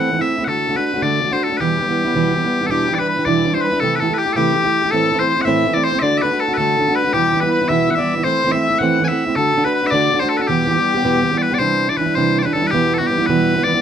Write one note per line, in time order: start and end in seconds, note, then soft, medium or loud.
0.00 0.11 A3 medium
0.00 0.12 C4 medium
0.00 0.13 E4 medium
0.00 0.21 F#5 loud
0.11 0.20 E3 soft
0.11 0.21 A3 soft
0.11 0.20 C4 medium
0.11 0.18 E4 medium
0.19 0.39 A3 soft
0.19 0.39 C4 soft
0.19 0.37 E4 soft
0.19 0.45 E5 medium
0.38 0.47 A3 soft
0.38 0.48 C4 soft
0.38 0.47 E4 soft
0.45 0.66 D3 soft
0.45 0.67 A3 medium
0.45 0.76 A4 medium
0.45 0.48 F#5 medium
0.49 0.68 D4 medium
0.49 0.68 F#4 medium
0.67 0.76 D3 medium
0.67 0.77 A3 medium
0.67 0.76 D4 medium
0.67 0.74 F#4 medium
0.75 0.95 A3 soft
0.75 0.95 D4 soft
0.75 0.93 F#4 soft
0.75 0.85 B4 medium
0.85 1.02 B4 medium
0.94 1.02 A3 soft
0.94 1.03 D4 soft
0.94 1.03 F#4 soft
1.02 1.21 D3 medium
1.02 1.23 A3 medium
1.02 1.23 D4 medium
1.02 1.24 F#4 medium
1.02 1.33 D5 medium
1.22 1.31 D3 soft
1.22 1.32 A3 medium
1.22 1.32 D4 medium
1.22 1.30 F#4 medium
1.31 1.51 A3 soft
1.31 1.50 D4 soft
1.31 1.49 F#4 medium
1.31 1.43 C5 medium
1.43 1.57 A4 medium
1.50 1.60 A3 soft
1.50 1.60 D4 soft
1.50 1.59 F#4 soft
1.57 1.79 E2 soft
1.57 1.79 B2 medium
1.57 1.78 E3 medium
1.57 2.66 G4 medium
1.57 1.60 B4 medium
1.61 1.79 G3 medium
1.61 1.80 B3 medium
1.61 1.80 E4 medium
1.79 1.88 E3 medium
1.79 1.88 G3 medium
1.79 1.87 B3 medium
1.79 1.86 E4 medium
1.87 2.07 E3 soft
1.87 2.06 G3 soft
1.87 2.05 B3 soft
1.87 2.04 E4 soft
2.05 2.15 G3 soft
2.05 2.15 B3 soft
2.05 2.14 E4 medium
2.09 2.14 E3 soft
2.14 2.34 E2 medium
2.14 2.34 B2 medium
2.14 2.34 E3 medium
2.14 2.35 G3 medium
2.14 2.35 B3 medium
2.14 2.36 E4 loud
2.35 2.44 E3 medium
2.35 2.44 G3 medium
2.35 2.44 B3 medium
2.35 2.43 E4 medium
2.44 2.63 E3 soft
2.44 2.62 G3 soft
2.44 2.61 B3 medium
2.44 2.60 E4 soft
2.61 2.69 E3 soft
2.61 2.70 G3 soft
2.61 2.71 B3 soft
2.61 2.70 E4 soft
2.66 2.89 E2 medium
2.66 2.89 B2 medium
2.66 2.87 E3 medium
2.66 3.00 G4 medium
2.66 2.70 A4 medium
2.70 2.89 G3 medium
2.70 2.90 D4 medium
2.70 2.91 E4 medium
2.70 2.94 G4 medium
2.89 2.98 E3 medium
2.89 2.99 G3 medium
2.89 2.98 D4 medium
2.89 2.97 E4 medium
2.94 3.15 E4 soft
2.94 2.99 D5 medium
2.99 3.18 E3 soft
2.99 3.17 G3 soft
2.99 3.16 D4 soft
2.99 3.08 B4 medium
2.99 3.07 B4 medium
3.08 3.25 B4 medium
3.08 3.27 B4 medium
3.16 3.25 E3 soft
3.16 3.26 G3 soft
3.16 3.26 D4 soft
3.16 3.26 E4 soft
3.25 3.45 E2 medium
3.25 3.46 B2 medium
3.25 3.44 E3 medium
3.25 3.45 G3 medium
3.25 3.46 D4 medium
3.25 3.46 E4 medium
3.25 3.54 D5 medium
3.25 3.53 D5 medium
3.45 3.54 E3 soft
3.45 3.55 G3 medium
3.45 3.55 D4 medium
3.54 3.74 E3 soft
3.54 3.73 G3 soft
3.54 3.72 D4 soft
3.54 3.71 E4 soft
3.54 3.61 C5 medium
3.54 3.64 C5 medium
3.61 3.80 B4 medium
3.72 3.80 E3 soft
3.72 3.82 G3 soft
3.72 3.82 D4 soft
3.72 3.81 E4 soft
3.80 4.01 C3 medium
3.80 3.99 E3 medium
3.80 4.00 A3 soft
3.80 4.01 E4 medium
3.80 4.02 G4 medium
3.80 3.95 A4 medium
3.80 3.98 A4 medium
3.95 4.00 B4 medium
4.00 4.09 E3 medium
4.00 4.10 A3 medium
4.00 4.09 E4 medium
4.00 4.08 G4 medium
4.00 4.17 A4 medium
4.00 4.14 A4 medium
4.09 4.28 A3 soft
4.09 4.26 E4 soft
4.09 4.24 G4 soft
4.14 4.34 G4 medium
4.14 4.18 B4 medium
4.18 4.33 G4 medium
4.26 4.35 A3 soft
4.26 4.36 E4 soft
4.26 4.36 G4 soft
4.33 4.56 C3 medium
4.33 4.53 E3 medium
4.33 4.54 A3 medium
4.33 4.88 G4 medium
4.33 4.91 G4 medium
4.33 4.36 A4 medium
4.37 4.56 E4 medium
4.37 4.56 G4 medium
4.54 4.64 E3 medium
4.54 4.65 A3 medium
4.54 4.64 E4 medium
4.54 4.63 G4 medium
4.64 4.84 A3 soft
4.64 4.83 E4 medium
4.64 4.82 G4 medium
4.83 4.92 A3 soft
4.83 4.93 E4 soft
4.83 4.92 G4 soft
4.91 5.12 A2 medium
4.91 5.11 E3 soft
4.91 5.12 A3 medium
4.91 5.13 C4 medium
4.91 5.13 E4 medium
4.91 5.19 A4 medium
4.91 5.21 A4 medium
5.12 5.21 E3 medium
5.12 5.22 A3 medium
5.12 5.20 C4 medium
5.12 5.18 E4 medium
5.19 5.38 C4 soft
5.19 5.36 E4 soft
5.19 5.28 C5 medium
5.23 5.40 A3 soft
5.28 5.42 C5 medium
5.28 5.48 C5 medium
5.37 5.45 A3 soft
5.37 5.46 C4 soft
5.37 5.46 E4 soft
5.42 5.66 A2 medium
5.42 5.74 E5 medium
5.42 5.45 F#5 medium
5.46 5.64 E3 medium
5.46 5.65 A3 medium
5.46 5.66 C4 medium
5.46 5.67 E4 medium
5.46 5.76 E5 medium
5.65 5.75 E3 medium
5.65 5.76 A3 medium
5.65 5.75 C4 medium
5.74 5.95 A3 soft
5.74 5.93 C4 soft
5.74 5.91 E4 soft
5.74 5.84 D5 medium
5.84 5.99 C5 loud
5.84 6.03 C5 medium
5.95 6.02 A3 soft
5.95 6.03 C4 soft
5.99 6.21 D3 medium
5.99 6.22 A3 medium
5.99 6.18 D5 medium
5.99 6.23 D5 medium
5.99 6.02 E5 medium
6.03 6.23 D4 medium
6.03 6.23 F#4 medium
6.18 6.40 B4 medium
6.18 6.22 E5 medium
6.22 6.31 D3 medium
6.22 6.32 A3 medium
6.22 6.31 D4 medium
6.22 6.41 B4 medium
6.26 6.29 F#4 medium
6.31 6.51 A3 soft
6.31 6.49 D4 soft
6.31 6.47 F#4 soft
6.40 6.54 A4 medium
6.40 6.57 A4 medium
6.48 6.58 A3 soft
6.48 6.58 D4 soft
6.48 6.58 F#4 medium
6.54 6.95 A4 medium
6.54 6.57 B4 medium
6.58 6.77 D3 medium
6.58 6.78 A3 medium
6.58 6.79 D4 medium
6.58 6.79 F#4 medium
6.58 6.93 A4 medium
6.79 6.87 D3 soft
6.79 6.88 A3 medium
6.79 6.88 D4 soft
6.79 6.87 F#4 medium
6.88 7.07 A3 soft
6.88 7.05 D4 soft
6.88 7.03 F#4 soft
6.95 7.12 B4 medium
6.95 7.13 B4 medium
7.04 7.15 A3 soft
7.04 7.15 D4 soft
7.04 7.14 F#4 soft
7.13 7.33 E2 medium
7.13 7.34 B2 soft
7.13 7.32 E3 medium
7.13 7.33 G3 soft
7.13 7.34 B3 medium
7.13 7.34 E4 medium
7.13 7.40 G4 medium
7.13 7.43 G4 medium
7.33 7.42 E3 soft
7.33 7.43 G3 medium
7.33 7.43 B3 medium
7.33 7.42 E4 medium
7.40 7.61 B3 soft
7.40 7.60 E4 medium
7.40 7.51 B4 medium
7.40 7.49 B4 medium
7.46 7.63 E3 soft
7.46 7.62 G3 soft
7.50 7.70 B4 medium
7.50 7.68 B4 medium
7.61 7.69 E3 soft
7.61 7.69 G3 soft
7.61 7.70 B3 soft
7.61 7.70 E4 medium
7.68 7.89 E2 medium
7.68 7.89 B2 medium
7.68 7.87 E3 medium
7.68 7.88 G3 medium
7.68 7.89 B3 medium
7.68 7.90 E4 medium
7.68 7.91 E5 medium
7.68 7.99 E5 medium
7.88 7.98 E3 medium
7.88 7.98 G3 medium
7.88 7.97 B3 medium
7.88 7.95 F#5 medium
7.95 8.16 B3 soft
7.95 8.14 E4 soft
7.95 8.14 D5 medium
7.95 8.24 E5 medium
7.99 8.17 E3 soft
7.99 8.16 G3 soft
8.15 8.24 G3 soft
8.15 8.25 B3 soft
8.15 8.25 E4 soft
8.19 8.23 E3 soft
8.24 8.43 E3 medium
8.24 8.45 A3 medium
8.24 8.45 C4 medium
8.24 8.46 E4 medium
8.24 8.52 C5 medium
8.44 8.54 E3 soft
8.44 8.54 A3 medium
8.44 8.53 C4 medium
8.44 8.51 E4 medium
8.52 8.71 C4 soft
8.52 8.69 E4 soft
8.52 8.60 E5 medium
8.52 8.61 E5 medium
8.56 8.73 A3 soft
8.60 8.79 E5 medium
8.60 8.81 E5 medium
8.70 8.80 A3 soft
8.70 8.81 C4 soft
8.70 8.80 E4 soft
8.79 8.98 E3 medium
8.79 9.00 A3 medium
8.79 9.01 C4 medium
8.79 9.04 F#5 medium
8.79 9.24 F#5 medium
8.83 9.02 E4 medium
9.00 9.09 E3 medium
9.00 9.10 A3 medium
9.00 9.10 C4 soft
9.04 9.08 E4 medium
9.04 9.08 G#5 medium
9.08 9.27 C4 soft
9.08 9.26 E4 soft
9.08 9.36 E5 medium
9.12 9.28 A3 soft
9.27 9.36 A3 soft
9.27 9.37 C4 soft
9.27 9.36 E4 soft
9.36 9.54 D3 medium
9.36 9.55 A3 medium
9.36 9.56 D4 medium
9.36 9.57 F#4 medium
9.36 9.64 A4 medium
9.36 9.66 A4 medium
9.55 9.64 D3 soft
9.55 9.65 A3 medium
9.55 9.65 D4 medium
9.55 9.63 F#4 medium
9.64 9.84 A3 soft
9.64 9.83 D4 soft
9.64 9.73 B4 medium
9.73 9.87 B4 medium
9.73 9.93 B4 medium
9.83 9.92 A3 soft
9.83 9.93 D4 medium
9.83 9.92 F#4 soft
9.83 9.90 E5 loud
9.90 10.10 D3 medium
9.90 10.12 A3 medium
9.90 10.13 D4 medium
9.90 10.19 D5 loud
9.90 10.21 D5 medium
9.95 10.13 F#4 medium
10.11 10.21 D3 medium
10.11 10.21 A3 medium
10.11 10.22 D4 medium
10.15 10.20 F#4 medium
10.19 10.40 D4 soft
10.19 10.38 F#4 soft
10.19 10.29 C5 medium
10.19 10.31 C5 medium
10.25 10.41 A3 soft
10.29 10.37 A4 medium
10.29 10.48 A4 medium
10.37 10.48 F#4 soft
10.37 10.41 B4 medium
10.41 10.49 A3 soft
10.41 10.49 D4 soft
10.41 10.47 A4 medium
10.47 10.68 E2 medium
10.47 10.68 B2 soft
10.47 10.66 E3 medium
10.47 10.67 G3 medium
10.47 10.68 B3 medium
10.47 11.38 G4 medium
10.47 11.20 G4 medium
10.47 10.69 G4 medium
10.67 10.76 E3 medium
10.67 10.77 G3 medium
10.67 10.76 B3 medium
10.67 10.75 G4 medium
10.76 10.96 E3 soft
10.76 10.96 G3 soft
10.76 10.95 B3 soft
10.76 10.94 G4 soft
10.95 11.03 E3 soft
10.95 11.04 G3 medium
10.95 11.04 B3 medium
10.95 11.04 G4 medium
11.03 11.23 E2 medium
11.03 11.24 B2 medium
11.03 11.22 E3 medium
11.03 11.23 G3 loud
11.03 11.24 B3 medium
11.03 11.25 G4 medium
11.23 11.32 E3 soft
11.23 11.33 G3 medium
11.23 11.32 B3 medium
11.23 11.30 G4 medium
11.31 11.52 E3 soft
11.31 11.51 G3 soft
11.31 11.51 B3 soft
11.31 11.50 G4 medium
11.38 11.42 D5 medium
11.42 11.54 B4 medium
11.51 11.59 E3 soft
11.51 11.60 G3 soft
11.51 11.60 B3 soft
11.51 11.60 G4 soft
11.51 11.59 D5 medium
11.59 11.88 C3 medium
11.59 11.89 E3 soft
11.59 11.89 G3 medium
11.59 11.88 D4 medium
11.59 11.86 E4 medium
11.59 11.89 C5 medium
11.88 11.98 G3 soft
11.88 11.98 D4 soft
11.88 11.97 E4 soft
11.88 11.97 D5 medium
11.97 12.06 E3 medium
11.97 12.07 G3 medium
11.97 12.06 D4 medium
11.97 12.15 B4 medium
12.01 12.05 E4 medium
12.06 12.16 G3 soft
12.06 12.16 D4 soft
12.06 12.15 E4 medium
12.15 12.45 C3 medium
12.15 12.45 E3 medium
12.15 12.45 G3 medium
12.15 12.45 D4 medium
12.15 12.43 E4 medium
12.15 12.39 C5 medium
12.39 12.44 C5 soft
12.39 12.42 D5 soft
12.44 12.54 G3 soft
12.44 12.54 D4 medium
12.44 12.53 E4 medium
12.44 12.53 B4 medium
12.53 12.62 E3 medium
12.53 12.63 G3 medium
12.53 12.63 D4 medium
12.53 12.67 A4 medium
12.57 12.61 E4 medium
12.62 12.72 G3 soft
12.62 12.71 E4 soft
12.67 12.94 G4 medium
12.67 12.70 B4 medium
12.72 13.00 E2 medium
12.72 13.01 B2 medium
12.72 13.01 E3 medium
12.72 13.01 G3 medium
12.72 13.01 B3 medium
12.72 12.99 E4 medium
12.94 12.98 A4 medium
12.98 13.10 B3 soft
12.98 13.09 E4 medium
12.98 13.07 F#4 medium
13.03 13.08 E3 soft
13.03 13.09 G3 soft
13.07 13.18 E3 soft
13.07 13.19 G3 medium
13.07 13.26 G4 medium
13.11 13.18 B3 medium
13.11 13.17 E4 medium
13.18 13.28 E3 soft
13.18 13.28 G3 soft
13.18 13.28 B3 soft
13.18 13.27 E4 medium
13.26 13.56 E2 medium
13.26 13.56 B2 medium
13.26 13.57 E3 medium
13.26 13.57 G3 medium
13.26 13.56 B3 medium
13.26 13.64 B4 medium
13.30 13.55 E4 medium
13.56 13.63 E3 soft
13.56 13.65 G3 soft
13.56 13.65 B3 soft
13.56 13.65 E4 soft
13.64 13.74 E3 medium
13.64 13.74 G3 medium
13.64 13.74 B3 medium
13.64 13.81 D5 loud
13.68 13.72 E4 medium
13.73 13.81 E3 soft
13.73 13.81 G3 soft
13.73 13.81 B3 soft
13.73 13.81 E4 soft